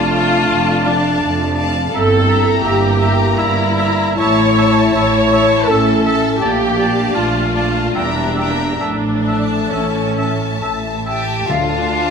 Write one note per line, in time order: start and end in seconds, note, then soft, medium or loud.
0.00 0.43 F1 medium
0.00 0.43 F2 medium
0.00 0.89 A3 medium
0.00 1.76 A3 medium
0.00 1.76 D4 medium
0.00 0.87 F4 medium
0.00 0.14 D5 soft
0.00 1.77 D5 soft
0.00 0.14 F5 soft
0.00 0.14 A5 soft
0.00 1.69 A5 soft
0.15 0.87 D5 soft
0.15 0.86 F5 soft
0.15 0.87 A5 soft
0.51 1.15 F1 medium
0.51 1.15 F2 medium
0.87 1.23 F3 medium
0.87 1.23 D4 medium
0.87 1.57 D5 soft
0.87 1.56 F5 soft
0.87 1.57 A5 soft
1.23 1.85 F1 medium
1.23 1.86 F2 medium
1.58 1.93 D5 medium
1.58 1.93 F5 medium
1.58 1.93 A5 soft
1.93 2.56 G1 medium
1.93 2.57 G2 medium
1.93 4.14 A#3 medium
1.93 2.66 C4 medium
1.93 6.37 E4 medium
1.93 2.60 A4 medium
1.93 2.10 E5 medium
1.93 2.02 A#5 medium
2.28 2.99 E5 soft
2.28 2.46 E5 medium
2.28 2.37 A#5 soft
2.28 3.00 A#5 medium
2.64 3.29 G1 medium
2.64 3.29 G2 medium
2.64 3.40 A#3 medium
2.64 3.38 G4 medium
2.64 2.81 E5 medium
2.64 2.73 A#5 medium
3.00 3.76 E5 soft
3.00 3.18 E5 soft
3.00 3.76 A#5 medium
3.00 3.09 A#5 medium
3.38 4.09 G1 medium
3.38 4.10 G2 medium
3.38 4.19 G3 medium
3.38 4.18 E4 medium
3.38 3.54 E5 medium
3.38 3.48 A#5 soft
3.77 4.16 E5 medium
3.77 3.95 E5 soft
3.77 4.18 A#5 soft
3.77 3.87 A#5 soft
4.17 4.86 A1 medium
4.17 4.86 A2 medium
4.17 7.91 A3 medium
4.17 4.93 E4 medium
4.17 4.92 C#5 medium
4.17 4.56 E5 medium
4.17 4.36 E5 medium
4.17 4.56 A5 soft
4.17 4.27 A5 medium
4.17 4.56 A5 soft
4.57 5.30 E5 soft
4.57 4.74 E5 medium
4.57 5.30 A5 soft
4.57 4.66 A5 medium
4.94 5.60 A1 medium
4.94 5.60 A2 medium
4.94 5.71 E4 medium
4.94 5.66 C#5 medium
4.94 5.12 E5 soft
4.94 5.03 A5 medium
5.32 6.04 E5 soft
5.32 5.49 E5 soft
5.32 6.03 A5 soft
5.32 5.40 A5 soft
5.32 6.03 A5 soft
5.68 6.33 A1 medium
5.68 6.33 A2 medium
5.68 6.41 C#4 medium
5.68 6.41 A4 medium
5.68 5.86 E5 soft
5.68 5.76 A5 soft
6.05 6.41 E5 medium
6.05 6.22 E5 soft
6.05 6.13 A5 soft
6.05 6.40 A5 soft
6.05 6.41 A5 soft
6.40 7.07 A#1 medium
6.40 7.06 A#2 medium
6.40 7.17 A#3 medium
6.40 7.91 D4 medium
6.40 7.13 G4 medium
6.40 6.57 D5 soft
6.40 6.50 A5 soft
6.77 6.95 D5 soft
6.77 7.54 D5 soft
6.77 7.53 F5 soft
6.77 7.53 A5 soft
6.77 6.86 A5 soft
7.15 7.85 A#1 medium
7.15 7.86 A#2 medium
7.15 7.96 A3 medium
7.15 7.95 F4 medium
7.15 7.32 D5 soft
7.15 7.24 A5 soft
7.55 7.71 D5 soft
7.55 7.95 D5 soft
7.55 7.95 F5 soft
7.55 7.95 A5 soft
7.55 7.64 A5 soft
7.94 8.71 E1 medium
7.94 8.72 E2 medium
7.94 8.50 G3 medium
7.94 8.77 A#3 medium
7.94 8.79 D4 medium
7.94 8.77 G4 medium
7.94 8.11 E5 soft
7.94 8.37 E5 soft
7.94 8.05 G5 soft
7.94 8.38 G5 soft
7.94 8.36 A#5 soft
8.37 8.53 E5 soft
8.37 8.82 E5 soft
8.37 8.48 G5 soft
8.37 8.82 G5 soft
8.37 8.81 A#5 soft
8.80 9.62 A1 soft
8.80 9.62 A2 medium
8.80 9.73 F3 medium
8.80 11.10 A3 medium
8.80 9.70 D4 medium
8.80 11.10 A4 medium
8.80 8.96 E5 soft
8.80 8.91 A5 soft
9.26 10.17 E5 soft
9.26 9.44 E5 soft
9.26 9.36 A5 soft
9.26 10.16 A5 soft
9.26 10.17 A5 soft
9.71 10.52 A1 soft
9.71 10.52 A2 soft
9.71 10.62 E3 soft
9.71 10.62 C#4 medium
9.71 9.89 E5 soft
9.71 9.83 A5 soft
10.17 10.33 E5 soft
10.17 11.06 E5 soft
10.17 11.05 A5 soft
10.17 10.28 A5 soft
10.17 11.06 A5 soft
10.62 11.40 A1 soft
10.62 11.40 A2 soft
10.62 10.78 E5 soft
10.62 10.72 A5 soft
11.06 11.47 G4 medium
11.06 11.22 E5 soft
11.06 11.49 E5 medium
11.06 11.46 G5 soft
11.06 11.49 A5 soft
11.06 11.50 A5 soft
11.48 12.10 D2 medium
11.48 12.10 D3 medium
11.48 12.10 A3 medium
11.48 12.10 D4 medium
11.48 12.10 F4 medium
11.48 12.10 A4 medium
11.48 12.10 F5 medium
11.48 12.10 A5 medium